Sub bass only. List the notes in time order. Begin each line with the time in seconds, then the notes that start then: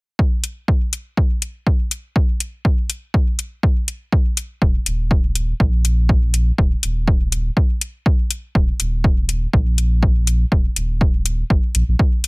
4.62 D#1
4.86 D#1
5.60 A#1
6.58 D#1
6.83 D#1
8.55 D#1
8.80 D#1
9.53 A#1
10.52 D#1
10.76 D#1
11.50 F#1
11.75 A#1
11.88 A#1